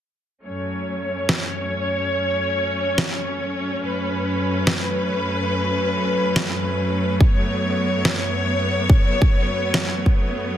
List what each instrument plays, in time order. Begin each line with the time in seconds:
0.45 string section F#2 F#3 A3 C#4 C#5
1.29 snare
2.98 snare
3.83 string section B4
4.67 snare
6.36 snare
7.21 string section B3 C#5, kick
8.05 snare
8.90 kick
9.22 kick
9.74 snare
10.06 kick